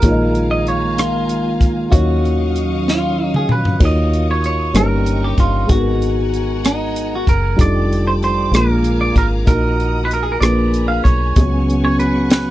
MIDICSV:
0, 0, Header, 1, 7, 480
1, 0, Start_track
1, 0, Key_signature, -6, "minor"
1, 0, Tempo, 630252
1, 13, Time_signature, 6, 3, 24, 8
1, 9525, End_track
2, 0, Start_track
2, 0, Title_t, "String section"
2, 0, Program_c, 0, 48
2, 20, Note_on_c, 0, 82, 55
2, 21, Note_on_c, 0, 77, 59
2, 24, Note_on_c, 0, 80, 55
2, 1444, Note_off_c, 0, 77, 0
2, 1444, Note_off_c, 0, 82, 0
2, 1446, Note_off_c, 0, 80, 0
2, 1458, Note_on_c, 0, 77, 65
2, 1461, Note_on_c, 0, 75, 53
2, 1461, Note_on_c, 0, 87, 59
2, 1464, Note_on_c, 0, 85, 51
2, 2883, Note_off_c, 0, 77, 0
2, 2885, Note_off_c, 0, 75, 0
2, 2885, Note_off_c, 0, 87, 0
2, 2886, Note_off_c, 0, 85, 0
2, 2896, Note_on_c, 0, 87, 63
2, 2902, Note_on_c, 0, 75, 50
2, 2902, Note_on_c, 0, 77, 48
2, 2904, Note_on_c, 0, 85, 49
2, 3609, Note_off_c, 0, 87, 0
2, 3612, Note_off_c, 0, 75, 0
2, 3612, Note_off_c, 0, 77, 0
2, 3613, Note_off_c, 0, 85, 0
2, 3629, Note_on_c, 0, 82, 51
2, 3632, Note_on_c, 0, 85, 65
2, 3633, Note_on_c, 0, 79, 50
2, 3634, Note_on_c, 0, 75, 62
2, 4336, Note_off_c, 0, 82, 0
2, 4337, Note_off_c, 0, 85, 0
2, 4338, Note_off_c, 0, 75, 0
2, 4338, Note_off_c, 0, 79, 0
2, 4349, Note_on_c, 0, 80, 57
2, 4354, Note_on_c, 0, 78, 62
2, 4355, Note_on_c, 0, 82, 51
2, 5768, Note_off_c, 0, 80, 0
2, 5769, Note_on_c, 0, 86, 60
2, 5771, Note_off_c, 0, 78, 0
2, 5772, Note_off_c, 0, 82, 0
2, 5779, Note_on_c, 0, 74, 56
2, 5779, Note_on_c, 0, 81, 51
2, 5781, Note_on_c, 0, 79, 51
2, 6490, Note_off_c, 0, 81, 0
2, 6491, Note_off_c, 0, 74, 0
2, 6492, Note_off_c, 0, 79, 0
2, 6505, Note_on_c, 0, 82, 58
2, 6510, Note_on_c, 0, 80, 61
2, 6512, Note_on_c, 0, 77, 61
2, 7198, Note_off_c, 0, 86, 0
2, 7216, Note_off_c, 0, 80, 0
2, 7216, Note_on_c, 0, 75, 60
2, 7217, Note_off_c, 0, 77, 0
2, 7222, Note_on_c, 0, 87, 62
2, 7224, Note_on_c, 0, 78, 53
2, 7926, Note_off_c, 0, 82, 0
2, 7929, Note_off_c, 0, 75, 0
2, 7932, Note_off_c, 0, 87, 0
2, 7932, Note_on_c, 0, 83, 51
2, 7933, Note_off_c, 0, 78, 0
2, 7933, Note_on_c, 0, 80, 64
2, 7939, Note_on_c, 0, 82, 55
2, 8647, Note_off_c, 0, 83, 0
2, 8650, Note_off_c, 0, 82, 0
2, 8650, Note_on_c, 0, 85, 66
2, 8653, Note_on_c, 0, 78, 59
2, 9525, Note_off_c, 0, 78, 0
2, 9525, Note_off_c, 0, 80, 0
2, 9525, Note_off_c, 0, 85, 0
2, 9525, End_track
3, 0, Start_track
3, 0, Title_t, "Clean electric guitar"
3, 0, Program_c, 1, 27
3, 0, Note_on_c, 1, 70, 82
3, 385, Note_off_c, 1, 70, 0
3, 388, Note_on_c, 1, 75, 83
3, 504, Note_off_c, 1, 75, 0
3, 520, Note_on_c, 1, 73, 76
3, 751, Note_on_c, 1, 65, 73
3, 754, Note_off_c, 1, 73, 0
3, 1460, Note_on_c, 1, 66, 72
3, 1485, Note_off_c, 1, 65, 0
3, 2207, Note_on_c, 1, 65, 70
3, 2388, Note_off_c, 1, 66, 0
3, 2528, Note_off_c, 1, 65, 0
3, 2560, Note_on_c, 1, 68, 64
3, 2671, Note_off_c, 1, 68, 0
3, 2679, Note_on_c, 1, 71, 68
3, 2891, Note_off_c, 1, 71, 0
3, 2934, Note_on_c, 1, 75, 87
3, 3251, Note_off_c, 1, 75, 0
3, 3281, Note_on_c, 1, 73, 67
3, 3386, Note_off_c, 1, 73, 0
3, 3395, Note_on_c, 1, 73, 72
3, 3627, Note_off_c, 1, 73, 0
3, 3630, Note_on_c, 1, 70, 68
3, 3994, Note_off_c, 1, 70, 0
3, 3994, Note_on_c, 1, 67, 63
3, 4109, Note_off_c, 1, 67, 0
3, 4112, Note_on_c, 1, 65, 65
3, 4342, Note_off_c, 1, 65, 0
3, 4345, Note_on_c, 1, 66, 77
3, 5073, Note_on_c, 1, 63, 73
3, 5083, Note_off_c, 1, 66, 0
3, 5435, Note_off_c, 1, 63, 0
3, 5449, Note_on_c, 1, 66, 72
3, 5545, Note_off_c, 1, 66, 0
3, 5552, Note_on_c, 1, 70, 77
3, 5791, Note_off_c, 1, 70, 0
3, 5796, Note_on_c, 1, 74, 89
3, 6146, Note_off_c, 1, 74, 0
3, 6149, Note_on_c, 1, 72, 77
3, 6187, Note_off_c, 1, 72, 0
3, 6275, Note_on_c, 1, 72, 82
3, 6490, Note_off_c, 1, 72, 0
3, 6518, Note_on_c, 1, 70, 82
3, 6858, Note_off_c, 1, 70, 0
3, 6861, Note_on_c, 1, 74, 73
3, 6982, Note_off_c, 1, 74, 0
3, 6989, Note_on_c, 1, 70, 84
3, 7052, Note_off_c, 1, 70, 0
3, 7217, Note_on_c, 1, 70, 92
3, 7651, Note_off_c, 1, 70, 0
3, 7654, Note_on_c, 1, 71, 66
3, 7716, Note_off_c, 1, 71, 0
3, 7719, Note_on_c, 1, 70, 70
3, 7790, Note_on_c, 1, 68, 70
3, 7793, Note_off_c, 1, 70, 0
3, 7859, Note_on_c, 1, 70, 67
3, 7863, Note_off_c, 1, 68, 0
3, 7922, Note_off_c, 1, 70, 0
3, 7925, Note_on_c, 1, 74, 83
3, 8265, Note_off_c, 1, 74, 0
3, 8287, Note_on_c, 1, 77, 73
3, 8404, Note_off_c, 1, 77, 0
3, 8407, Note_on_c, 1, 73, 84
3, 9012, Note_off_c, 1, 73, 0
3, 9022, Note_on_c, 1, 73, 76
3, 9132, Note_off_c, 1, 73, 0
3, 9135, Note_on_c, 1, 71, 76
3, 9369, Note_off_c, 1, 71, 0
3, 9378, Note_on_c, 1, 71, 80
3, 9525, Note_off_c, 1, 71, 0
3, 9525, End_track
4, 0, Start_track
4, 0, Title_t, "Upright piano"
4, 0, Program_c, 2, 0
4, 0, Control_c, 2, 64, 127
4, 18, Note_on_c, 2, 58, 53
4, 19, Note_on_c, 2, 63, 49
4, 23, Control_c, 2, 64, 0
4, 26, Note_on_c, 2, 68, 49
4, 27, Note_on_c, 2, 46, 54
4, 28, Note_on_c, 2, 65, 54
4, 36, Note_on_c, 2, 73, 46
4, 74, Note_off_c, 2, 73, 0
4, 84, Note_on_c, 2, 75, 59
4, 177, Control_c, 2, 64, 127
4, 710, Note_off_c, 2, 46, 0
4, 1429, Note_off_c, 2, 58, 0
4, 1429, Note_off_c, 2, 63, 0
4, 1433, Note_off_c, 2, 68, 0
4, 1434, Note_off_c, 2, 65, 0
4, 1445, Note_on_c, 2, 46, 55
4, 1450, Note_on_c, 2, 63, 51
4, 1452, Note_on_c, 2, 51, 48
4, 1453, Note_on_c, 2, 77, 47
4, 1461, Note_on_c, 2, 54, 51
4, 1462, Note_off_c, 2, 75, 0
4, 1464, Control_c, 2, 64, 0
4, 1464, Note_on_c, 2, 73, 64
4, 1581, Control_c, 2, 64, 127
4, 2144, Note_off_c, 2, 51, 0
4, 2862, Note_off_c, 2, 46, 0
4, 2865, Note_off_c, 2, 63, 0
4, 2866, Note_off_c, 2, 77, 0
4, 2871, Note_off_c, 2, 54, 0
4, 2872, Note_off_c, 2, 73, 0
4, 2890, Note_on_c, 2, 58, 52
4, 2893, Note_on_c, 2, 51, 51
4, 2893, Note_on_c, 2, 66, 47
4, 2894, Note_on_c, 2, 63, 49
4, 2894, Note_on_c, 2, 65, 46
4, 2896, Note_on_c, 2, 73, 58
4, 2906, Control_c, 2, 64, 0
4, 3037, Control_c, 2, 64, 127
4, 3584, Note_off_c, 2, 51, 0
4, 3601, Note_off_c, 2, 58, 0
4, 3602, Note_off_c, 2, 63, 0
4, 3608, Note_on_c, 2, 61, 49
4, 3613, Note_on_c, 2, 58, 46
4, 3614, Note_on_c, 2, 63, 46
4, 3615, Note_off_c, 2, 65, 0
4, 3615, Note_off_c, 2, 66, 0
4, 3616, Note_off_c, 2, 73, 0
4, 3619, Note_on_c, 2, 43, 54
4, 3619, Note_on_c, 2, 67, 47
4, 3621, Note_on_c, 2, 72, 50
4, 3626, Control_c, 2, 64, 0
4, 3667, Note_on_c, 2, 73, 55
4, 3668, Note_off_c, 2, 72, 0
4, 3751, Control_c, 2, 64, 127
4, 4308, Note_off_c, 2, 43, 0
4, 4313, Note_on_c, 2, 56, 53
4, 4318, Note_off_c, 2, 63, 0
4, 4318, Note_on_c, 2, 59, 49
4, 4330, Note_on_c, 2, 63, 50
4, 4331, Note_on_c, 2, 44, 51
4, 4332, Note_off_c, 2, 61, 0
4, 4332, Note_on_c, 2, 66, 51
4, 4335, Note_off_c, 2, 58, 0
4, 4336, Note_on_c, 2, 68, 49
4, 4338, Note_off_c, 2, 67, 0
4, 4347, Control_c, 2, 64, 0
4, 4362, Note_off_c, 2, 73, 0
4, 4385, Note_off_c, 2, 68, 0
4, 4390, Note_on_c, 2, 70, 62
4, 4490, Control_c, 2, 64, 127
4, 5023, Note_off_c, 2, 44, 0
4, 5736, Note_off_c, 2, 56, 0
4, 5739, Note_off_c, 2, 59, 0
4, 5744, Note_off_c, 2, 63, 0
4, 5745, Note_off_c, 2, 66, 0
4, 5761, Note_on_c, 2, 55, 62
4, 5761, Note_on_c, 2, 62, 48
4, 5765, Note_on_c, 2, 63, 53
4, 5768, Note_on_c, 2, 65, 53
4, 5769, Note_on_c, 2, 69, 60
4, 5775, Note_off_c, 2, 70, 0
4, 5787, Control_c, 2, 64, 0
4, 5918, Control_c, 2, 64, 127
4, 6475, Note_off_c, 2, 62, 0
4, 6482, Note_off_c, 2, 65, 0
4, 6487, Note_on_c, 2, 58, 52
4, 6487, Note_on_c, 2, 62, 44
4, 6488, Note_on_c, 2, 56, 51
4, 6489, Note_off_c, 2, 55, 0
4, 6491, Note_off_c, 2, 63, 0
4, 6493, Note_off_c, 2, 69, 0
4, 6493, Note_on_c, 2, 65, 54
4, 6494, Note_on_c, 2, 46, 58
4, 6494, Note_on_c, 2, 70, 58
4, 6507, Control_c, 2, 64, 0
4, 6657, Control_c, 2, 64, 127
4, 7185, Note_off_c, 2, 46, 0
4, 7201, Note_off_c, 2, 70, 0
4, 7204, Note_on_c, 2, 63, 56
4, 7207, Note_on_c, 2, 46, 50
4, 7211, Note_on_c, 2, 66, 53
4, 7212, Note_off_c, 2, 56, 0
4, 7212, Note_off_c, 2, 58, 0
4, 7212, Note_off_c, 2, 62, 0
4, 7213, Note_on_c, 2, 70, 63
4, 7215, Note_off_c, 2, 65, 0
4, 7227, Control_c, 2, 64, 0
4, 7340, Control_c, 2, 64, 127
4, 7901, Note_off_c, 2, 46, 0
4, 7929, Note_on_c, 2, 58, 52
4, 7930, Note_off_c, 2, 63, 0
4, 7932, Note_on_c, 2, 62, 43
4, 7934, Note_off_c, 2, 66, 0
4, 7934, Note_off_c, 2, 70, 0
4, 7935, Note_on_c, 2, 65, 46
4, 7937, Note_on_c, 2, 46, 55
4, 7938, Note_on_c, 2, 71, 54
4, 7941, Note_on_c, 2, 68, 47
4, 7945, Control_c, 2, 64, 0
4, 8091, Control_c, 2, 64, 127
4, 8626, Note_off_c, 2, 46, 0
4, 8651, Note_off_c, 2, 68, 0
4, 8652, Note_off_c, 2, 58, 0
4, 8654, Note_off_c, 2, 62, 0
4, 8654, Note_on_c, 2, 61, 50
4, 8655, Note_off_c, 2, 65, 0
4, 8655, Note_on_c, 2, 59, 55
4, 8657, Note_off_c, 2, 71, 0
4, 8660, Note_on_c, 2, 49, 57
4, 8662, Note_on_c, 2, 66, 51
4, 8663, Note_on_c, 2, 68, 47
4, 8665, Control_c, 2, 64, 0
4, 8668, Note_on_c, 2, 73, 58
4, 8786, Control_c, 2, 64, 127
4, 9347, Note_off_c, 2, 49, 0
4, 9525, Note_off_c, 2, 59, 0
4, 9525, Note_off_c, 2, 61, 0
4, 9525, Note_off_c, 2, 66, 0
4, 9525, Note_off_c, 2, 68, 0
4, 9525, Note_off_c, 2, 73, 0
4, 9525, End_track
5, 0, Start_track
5, 0, Title_t, "Tonewheel organ"
5, 0, Program_c, 3, 16
5, 0, Note_on_c, 3, 51, 52
5, 17, Note_on_c, 3, 77, 61
5, 24, Note_on_c, 3, 56, 51
5, 27, Note_on_c, 3, 58, 53
5, 1446, Note_off_c, 3, 56, 0
5, 1447, Note_off_c, 3, 58, 0
5, 1457, Note_on_c, 3, 54, 54
5, 1463, Note_on_c, 3, 61, 53
5, 2869, Note_off_c, 3, 77, 0
5, 2872, Note_off_c, 3, 51, 0
5, 2883, Note_off_c, 3, 54, 0
5, 2886, Note_off_c, 3, 61, 0
5, 8652, Note_on_c, 3, 61, 53
5, 8654, Note_on_c, 3, 59, 54
5, 8655, Note_on_c, 3, 68, 64
5, 8660, Note_on_c, 3, 54, 58
5, 9525, Note_off_c, 3, 54, 0
5, 9525, Note_off_c, 3, 59, 0
5, 9525, Note_off_c, 3, 61, 0
5, 9525, Note_off_c, 3, 68, 0
5, 9525, End_track
6, 0, Start_track
6, 0, Title_t, "Fingered electric bass"
6, 0, Program_c, 4, 33
6, 21, Note_on_c, 4, 34, 84
6, 1218, Note_off_c, 4, 34, 0
6, 1218, Note_on_c, 4, 37, 79
6, 1437, Note_off_c, 4, 37, 0
6, 1464, Note_on_c, 4, 39, 85
6, 2652, Note_off_c, 4, 39, 0
6, 2652, Note_on_c, 4, 37, 67
6, 2875, Note_off_c, 4, 37, 0
6, 2897, Note_on_c, 4, 39, 88
6, 3586, Note_off_c, 4, 39, 0
6, 3610, Note_on_c, 4, 31, 80
6, 4063, Note_off_c, 4, 31, 0
6, 4095, Note_on_c, 4, 31, 67
6, 4316, Note_off_c, 4, 31, 0
6, 4335, Note_on_c, 4, 32, 96
6, 5506, Note_off_c, 4, 32, 0
6, 5539, Note_on_c, 4, 30, 70
6, 5759, Note_off_c, 4, 30, 0
6, 5778, Note_on_c, 4, 29, 84
6, 6467, Note_off_c, 4, 29, 0
6, 6484, Note_on_c, 4, 34, 78
6, 6940, Note_off_c, 4, 34, 0
6, 6971, Note_on_c, 4, 32, 78
6, 7194, Note_off_c, 4, 32, 0
6, 7211, Note_on_c, 4, 34, 93
6, 7903, Note_off_c, 4, 34, 0
6, 7930, Note_on_c, 4, 34, 70
6, 8382, Note_off_c, 4, 34, 0
6, 8413, Note_on_c, 4, 35, 66
6, 8635, Note_off_c, 4, 35, 0
6, 8653, Note_on_c, 4, 37, 85
6, 9525, Note_off_c, 4, 37, 0
6, 9525, End_track
7, 0, Start_track
7, 0, Title_t, "Drums"
7, 15, Note_on_c, 9, 42, 75
7, 21, Note_on_c, 9, 36, 96
7, 92, Note_off_c, 9, 42, 0
7, 98, Note_off_c, 9, 36, 0
7, 266, Note_on_c, 9, 42, 48
7, 343, Note_off_c, 9, 42, 0
7, 508, Note_on_c, 9, 42, 41
7, 584, Note_off_c, 9, 42, 0
7, 749, Note_on_c, 9, 42, 74
7, 757, Note_on_c, 9, 37, 88
7, 825, Note_off_c, 9, 42, 0
7, 833, Note_off_c, 9, 37, 0
7, 985, Note_on_c, 9, 42, 60
7, 1061, Note_off_c, 9, 42, 0
7, 1224, Note_on_c, 9, 36, 73
7, 1231, Note_on_c, 9, 42, 39
7, 1300, Note_off_c, 9, 36, 0
7, 1307, Note_off_c, 9, 42, 0
7, 1464, Note_on_c, 9, 36, 91
7, 1467, Note_on_c, 9, 42, 83
7, 1540, Note_off_c, 9, 36, 0
7, 1543, Note_off_c, 9, 42, 0
7, 1716, Note_on_c, 9, 42, 44
7, 1792, Note_off_c, 9, 42, 0
7, 1947, Note_on_c, 9, 42, 41
7, 2023, Note_off_c, 9, 42, 0
7, 2195, Note_on_c, 9, 38, 43
7, 2271, Note_off_c, 9, 38, 0
7, 2545, Note_on_c, 9, 47, 51
7, 2621, Note_off_c, 9, 47, 0
7, 2658, Note_on_c, 9, 45, 67
7, 2734, Note_off_c, 9, 45, 0
7, 2782, Note_on_c, 9, 43, 71
7, 2858, Note_off_c, 9, 43, 0
7, 2896, Note_on_c, 9, 49, 79
7, 2899, Note_on_c, 9, 36, 94
7, 2972, Note_off_c, 9, 49, 0
7, 2975, Note_off_c, 9, 36, 0
7, 3150, Note_on_c, 9, 42, 46
7, 3226, Note_off_c, 9, 42, 0
7, 3382, Note_on_c, 9, 42, 43
7, 3458, Note_off_c, 9, 42, 0
7, 3615, Note_on_c, 9, 42, 74
7, 3623, Note_on_c, 9, 37, 82
7, 3691, Note_off_c, 9, 42, 0
7, 3699, Note_off_c, 9, 37, 0
7, 3856, Note_on_c, 9, 42, 59
7, 3932, Note_off_c, 9, 42, 0
7, 4096, Note_on_c, 9, 36, 73
7, 4096, Note_on_c, 9, 42, 41
7, 4172, Note_off_c, 9, 36, 0
7, 4172, Note_off_c, 9, 42, 0
7, 4335, Note_on_c, 9, 42, 78
7, 4337, Note_on_c, 9, 36, 94
7, 4411, Note_off_c, 9, 42, 0
7, 4413, Note_off_c, 9, 36, 0
7, 4585, Note_on_c, 9, 42, 48
7, 4661, Note_off_c, 9, 42, 0
7, 4826, Note_on_c, 9, 42, 42
7, 4902, Note_off_c, 9, 42, 0
7, 5062, Note_on_c, 9, 42, 75
7, 5070, Note_on_c, 9, 37, 92
7, 5138, Note_off_c, 9, 42, 0
7, 5146, Note_off_c, 9, 37, 0
7, 5302, Note_on_c, 9, 42, 60
7, 5378, Note_off_c, 9, 42, 0
7, 5539, Note_on_c, 9, 36, 74
7, 5548, Note_on_c, 9, 42, 40
7, 5615, Note_off_c, 9, 36, 0
7, 5625, Note_off_c, 9, 42, 0
7, 5780, Note_on_c, 9, 36, 104
7, 5785, Note_on_c, 9, 42, 78
7, 5856, Note_off_c, 9, 36, 0
7, 5861, Note_off_c, 9, 42, 0
7, 6036, Note_on_c, 9, 42, 46
7, 6112, Note_off_c, 9, 42, 0
7, 6265, Note_on_c, 9, 42, 43
7, 6341, Note_off_c, 9, 42, 0
7, 6503, Note_on_c, 9, 42, 77
7, 6510, Note_on_c, 9, 37, 96
7, 6579, Note_off_c, 9, 42, 0
7, 6587, Note_off_c, 9, 37, 0
7, 6734, Note_on_c, 9, 42, 59
7, 6810, Note_off_c, 9, 42, 0
7, 6974, Note_on_c, 9, 36, 71
7, 6979, Note_on_c, 9, 42, 36
7, 7050, Note_off_c, 9, 36, 0
7, 7055, Note_off_c, 9, 42, 0
7, 7214, Note_on_c, 9, 36, 99
7, 7218, Note_on_c, 9, 42, 76
7, 7290, Note_off_c, 9, 36, 0
7, 7294, Note_off_c, 9, 42, 0
7, 7464, Note_on_c, 9, 42, 45
7, 7540, Note_off_c, 9, 42, 0
7, 7700, Note_on_c, 9, 42, 44
7, 7776, Note_off_c, 9, 42, 0
7, 7938, Note_on_c, 9, 42, 72
7, 7946, Note_on_c, 9, 37, 92
7, 8014, Note_off_c, 9, 42, 0
7, 8022, Note_off_c, 9, 37, 0
7, 8178, Note_on_c, 9, 42, 58
7, 8254, Note_off_c, 9, 42, 0
7, 8416, Note_on_c, 9, 36, 65
7, 8423, Note_on_c, 9, 42, 37
7, 8492, Note_off_c, 9, 36, 0
7, 8500, Note_off_c, 9, 42, 0
7, 8652, Note_on_c, 9, 42, 81
7, 8655, Note_on_c, 9, 36, 96
7, 8729, Note_off_c, 9, 42, 0
7, 8731, Note_off_c, 9, 36, 0
7, 8908, Note_on_c, 9, 42, 42
7, 8984, Note_off_c, 9, 42, 0
7, 9136, Note_on_c, 9, 42, 44
7, 9212, Note_off_c, 9, 42, 0
7, 9371, Note_on_c, 9, 42, 77
7, 9379, Note_on_c, 9, 38, 96
7, 9447, Note_off_c, 9, 42, 0
7, 9455, Note_off_c, 9, 38, 0
7, 9525, End_track
0, 0, End_of_file